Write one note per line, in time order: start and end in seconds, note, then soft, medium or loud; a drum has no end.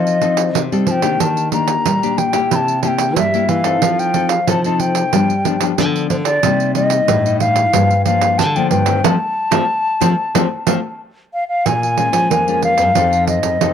0.00 0.52 F3 medium
0.00 0.55 F3 medium
0.00 0.17 C4 medium
0.00 0.17 D#4 medium
0.00 0.18 A4 medium
0.00 0.61 D#5 medium
0.07 pandeiro soft
0.21 0.66 C4 medium
0.21 0.66 D#4 medium
0.21 0.66 A4 medium
0.21 pandeiro medium
0.37 pandeiro medium
0.55 0.69 C3 medium
0.55 1.17 C3 medium
0.55 pandeiro medium
0.72 0.87 G3 medium
0.72 0.99 C4 medium
0.72 0.99 D#4 medium
0.72 1.00 A4 medium
0.72 pandeiro soft
0.86 1.02 F3 medium
0.86 0.92 A5 medium
0.86 pandeiro medium
0.91 1.22 G5 medium
1.02 1.18 D#3 medium
1.02 1.47 A#3 medium
1.02 1.47 D4 medium
1.02 1.48 G4 medium
1.02 pandeiro medium
1.20 1.76 D#3 medium
1.20 1.83 D#3 soft
1.20 1.52 A5 medium
1.20 pandeiro medium
1.37 pandeiro soft
1.52 1.83 A#3 soft
1.52 1.84 D4 medium
1.52 1.84 G4 medium
1.52 2.19 A#5 loud
1.52 pandeiro medium
1.68 pandeiro medium
1.86 2.48 A#2 medium
1.86 2.41 G3 medium
1.86 pandeiro medium
2.03 2.30 A#3 medium
2.03 2.30 D4 medium
2.03 2.30 G4 medium
2.03 pandeiro soft
2.18 2.54 G5 medium
2.18 pandeiro medium
2.33 2.78 A#3 medium
2.33 2.78 E4 medium
2.33 2.78 G4 medium
2.33 pandeiro medium
2.51 3.16 C3 medium
2.51 3.14 C3 medium
2.51 2.57 B5 medium
2.51 pandeiro medium
2.56 2.83 A5 loud
2.68 pandeiro soft
2.83 3.28 A#3 medium
2.83 3.28 E4 medium
2.83 3.28 G4 medium
2.83 2.89 A5 medium
2.83 pandeiro medium
2.88 3.14 G5 medium
2.98 pandeiro medium
3.16 3.79 G2 medium
3.16 3.44 G3 medium
3.16 3.50 E5 medium
3.16 pandeiro medium
3.34 3.61 A#3 medium
3.34 3.61 E4 medium
3.34 3.61 G4 medium
3.34 pandeiro soft
3.48 3.77 E3 medium
3.48 4.01 F5 medium
3.48 pandeiro medium
3.64 4.09 C4 medium
3.64 4.09 D#4 medium
3.64 4.09 A4 medium
3.64 pandeiro medium
3.82 4.38 F3 medium
3.82 4.44 F3 medium
3.82 pandeiro medium
3.99 4.31 G5 medium
3.99 pandeiro soft
4.14 4.34 C4 medium
4.14 4.34 D#4 medium
4.14 4.34 A4 medium
4.14 pandeiro medium
4.29 4.50 F5 medium
4.29 pandeiro medium
4.47 5.10 C3 medium
4.47 5.03 F3 medium
4.47 4.59 C4 medium
4.47 4.59 D#4 medium
4.47 4.59 A4 medium
4.47 4.64 A5 medium
4.47 pandeiro medium
4.64 5.08 C4 medium
4.64 5.09 D#4 medium
4.64 5.09 A4 medium
4.64 4.82 A5 medium
4.64 pandeiro soft
4.80 5.84 G5 medium
4.80 pandeiro medium
4.95 pandeiro medium
5.13 5.75 G2 medium
5.13 5.32 F3 medium
5.13 5.78 G3 medium
5.13 5.32 B3 medium
5.13 5.33 D4 medium
5.13 pandeiro medium
5.30 pandeiro soft
5.45 5.55 F3 medium
5.45 5.55 B3 medium
5.45 5.55 D4 medium
5.45 pandeiro medium
5.60 5.72 F3 medium
5.60 5.72 B3 medium
5.60 5.73 D4 medium
5.60 pandeiro medium
5.78 6.40 D3 medium
5.78 6.06 D3 medium
5.78 6.20 F3 medium
5.78 6.20 B3 medium
5.78 6.20 D4 medium
5.78 pandeiro medium
5.96 pandeiro soft
6.10 6.38 D3 medium
6.10 6.16 C5 medium
6.10 pandeiro medium
6.25 6.72 D5 medium
6.25 pandeiro medium
6.43 7.05 C3 medium
6.43 6.99 C3 medium
6.43 6.71 G3 medium
6.43 6.71 A#3 soft
6.43 6.71 D#4 medium
6.43 pandeiro medium
6.60 pandeiro soft
6.75 7.19 G3 medium
6.75 7.20 A#3 medium
6.75 7.20 D#4 medium
6.75 7.37 D#5 medium
6.75 pandeiro medium
6.90 pandeiro medium
7.08 7.71 G2 medium
7.08 7.64 A2 medium
7.08 pandeiro medium
7.25 7.69 G3 medium
7.25 7.69 D#4 medium
7.25 pandeiro soft
7.40 8.02 F5 medium
7.40 pandeiro medium
7.56 pandeiro medium
7.73 8.39 G2 medium
7.73 8.36 G2 medium
7.73 7.93 F3 medium
7.73 7.93 A#3 medium
7.73 7.93 D4 medium
7.73 pandeiro medium
7.90 pandeiro soft
8.05 8.37 F3 medium
8.05 8.37 A#3 medium
8.05 8.37 D4 medium
8.05 8.40 F5 medium
8.05 pandeiro medium
8.21 pandeiro medium
8.38 8.67 D3 medium
8.38 9.01 D3 medium
8.38 8.58 A5 medium
8.38 pandeiro medium
8.56 8.83 F3 medium
8.56 8.83 A#3 medium
8.56 8.84 D4 medium
8.56 8.70 G5 medium
8.56 pandeiro soft
8.71 8.99 G2 loud
8.71 9.06 G5 medium
8.71 pandeiro medium
8.86 9.04 D#3 medium
8.86 9.03 A3 medium
8.86 9.03 C4 medium
8.86 pandeiro medium
9.04 9.15 F3 medium
9.04 9.17 F3 medium
9.04 9.15 A3 medium
9.04 9.15 C4 medium
9.04 11.00 A5 loud
9.04 pandeiro loud
9.51 9.63 F3 medium
9.51 9.64 F3 loud
9.51 9.62 A3 medium
9.51 9.63 C4 medium
9.51 pandeiro loud
10.01 10.12 F3 medium
10.01 10.14 F3 medium
10.01 10.12 A3 medium
10.01 10.12 C4 medium
10.01 pandeiro medium
10.35 10.47 F3 medium
10.35 10.45 F3 medium
10.35 10.45 A3 medium
10.35 10.45 C4 medium
10.35 pandeiro loud
10.66 10.77 F3 loud
10.66 10.79 F3 medium
10.66 10.78 A3 loud
10.66 10.78 C4 loud
10.66 pandeiro medium
11.34 11.47 F5 medium
11.48 11.67 F5 loud
11.66 12.07 A#2 medium
11.66 12.28 A#2 medium
11.66 12.64 G#5 loud
11.66 pandeiro medium
11.83 pandeiro soft
11.97 12.42 G#3 soft
11.97 12.42 C#4 medium
11.97 12.42 F4 medium
11.97 pandeiro medium
12.13 12.27 F3 medium
12.13 pandeiro medium
12.30 12.93 F2 medium
12.30 12.79 A#3 medium
12.30 pandeiro medium
12.48 12.91 G#3 medium
12.48 12.91 C#4 medium
12.48 12.92 F4 medium
12.48 pandeiro soft
12.62 13.25 F5 loud
12.62 pandeiro soft
12.78 12.92 F#2 medium
12.78 pandeiro medium
12.95 13.38 F2 medium
12.95 13.58 F3 soft
12.95 13.56 C4 medium
12.95 13.56 D#4 soft
12.95 13.57 A4 medium
12.95 pandeiro medium
13.13 pandeiro soft
13.27 13.73 D#5 medium
13.27 pandeiro medium
13.43 13.58 F2 medium
13.43 pandeiro medium
13.61 13.73 F2 medium
13.61 13.73 C3 medium
13.61 13.73 C4 medium
13.61 13.73 D#4 medium
13.61 13.73 A4 medium
13.61 pandeiro medium